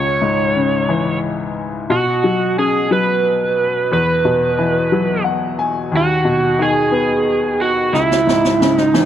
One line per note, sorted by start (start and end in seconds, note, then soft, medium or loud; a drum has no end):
0.00 1.85 C#2 soft
0.00 1.19 C#5 medium
0.22 1.52 G#2 soft
0.56 1.86 C#3 soft
0.89 1.86 E3 soft
1.90 3.87 B2 soft
1.90 2.59 F#4 medium
2.24 2.89 F#3 soft
2.58 3.88 C#4 soft
2.58 2.89 G#4 medium
2.91 3.88 F#3 soft
2.91 3.92 B4 medium
3.92 5.89 E2 soft
3.92 5.22 B4 medium
4.25 5.55 B2 soft
4.59 5.88 E3 soft
4.92 5.89 F#3 soft
5.24 5.56 F#5 soft
5.59 5.90 G#5 medium
5.92 7.89 D#2 soft
5.97 6.63 F#4 medium
6.25 7.55 B2 soft
6.59 7.89 D#3 soft
6.59 7.64 G#4 medium
6.92 7.90 B3 soft
7.62 7.95 F#4 medium
7.93 9.05 C#2 soft
7.93 8.78 E4 medium
7.93 snare soft
8.12 snare soft
8.27 9.05 G#2 soft
8.27 snare soft
8.45 snare soft
8.60 9.05 C#3 soft
8.60 snare medium
8.78 9.05 D#4 medium
8.78 snare soft
8.94 9.05 E3 soft
8.94 snare medium